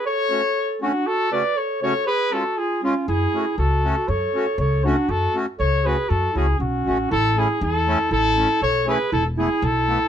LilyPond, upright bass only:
\new Staff \with { instrumentName = "Upright bass" } { \clef bass \time 2/4 \key fis \minor \tempo 4 = 119 r2 | r2 | r2 | fis,8 r8 cis,4 |
fis,8 r8 cis,4 | fis,8 r8 cis,4 | fis,8 cis,8 b,,8 a,,8 | \key a \major a,,4 e,4 |
a,,4 b,,4 | e,,4 b,,4 | }